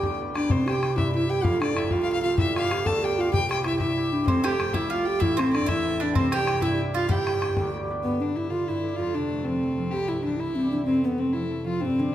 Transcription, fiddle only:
Already playing: G5
0.35 D5
0.51 C5
0.69 G5
0.97 E5
1.15 E5
1.29 G5
1.44 F5
1.62 D5
1.77 E5
1.92 F5
2.03 F5
2.12 F5
2.22 F5
2.39 E5
2.57 F5
2.86 A5
3.04 G5
3.20 F5
3.33 G5
3.51 G5
3.66 E5
3.79 E5
4.27 C5
4.44 G5
4.73 E5
4.91 F5
5.05 G5
5.19 E5
5.37 C5
5.53 D5
5.68 E5
6.00 D5
6.15 C5
6.33 G5
6.63 E5
6.95 F5
7.10 G5
8.03 B3
8.21 D4
8.35 E4
8.50 F4
8.68 E4
8.96 F4
9.15 D4
9.44 C4
9.91 G4
10.08 E4
10.24 D4
10.39 E4
10.85 C4
11.04 B3
11.19 C4
11.33 E4
11.66 F4
11.80 C4

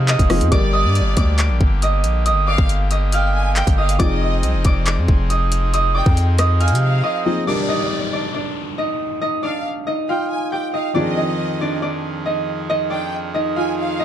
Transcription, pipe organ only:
Already playing: F3 C4 D#4 G#4
0.52 D3 A#3 G4
4.00 F3 C4 D#4 G#4
10.95 F2 D#3 F3 G#4

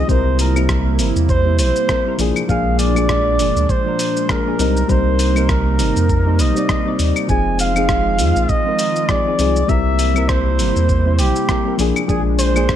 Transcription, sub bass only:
0.09 C2
0.99 G1
1.16 E2
1.59 A#1
2.19 A#1
2.49 A#1
3.39 F1
3.56 D2
4.59 C2
4.89 C2
5.79 G1
5.97 F2
6.39 A#1
6.99 D#2
7.29 F1
8.19 F2
8.36 A#1
9.39 C2
9.69 C2
10.59 G1
10.76 E2
11.19 A#1
11.79 A#1
12.09 A#1

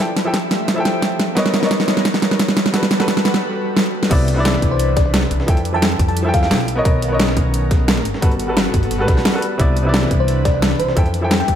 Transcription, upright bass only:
4.11 C2
4.62 C2
5.31 C2
5.48 F2
5.99 F2
6.51 B1
6.85 B1
7.37 B1
8.05 G1
8.22 G1
8.74 G1
8.91 G1
9.08 B1
9.59 C2
10.11 C2
10.80 C2
10.97 F2
11.48 F2

